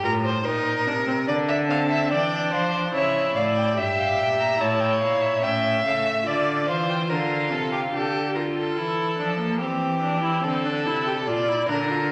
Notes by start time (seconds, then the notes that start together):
0.03 A2 F4 A#4
0.25 C5
0.45 A#2 D#4 A#4
0.86 C3 D4
1.07 C4
1.27 D3 D4 D5
1.48 E5
1.69 C4 F5 A5
1.90 E5
2.11 E3 D4 D5 G5
2.52 F3 C5 F5
2.72 D5
2.93 C#3 E4 C#5 E5
3.35 A2 D5 F5
3.57 G5
3.76 G2 G4 E5
3.98 F5
4.18 A#2 G5
4.40 A#5
4.60 A2 E4 C#5 A5
4.80 G5
5.01 A#2 F5
5.22 E5
5.43 A2 C#4 E5 G5
5.84 C#3 A3 F5
6.05 E5
6.26 D3 F4 D5
6.68 E3 C5 F5
6.89 G5
7.10 D3 A#4 F5
7.52 C3 A4
7.72 G4
7.93 D3 G4 A4
8.35 F4 A#4
8.55 A4
8.77 E3 E4
9.19 F3 D4
9.40 A#3
9.60 E3 C4 G4
10.03 D4
10.23 E4
10.44 D3 C4 A4
10.65 D4
10.85 C3 E4
11.07 G4
11.27 A#2 F4 D5
11.48 E4
11.68 D3 D4 A#4
11.90 F4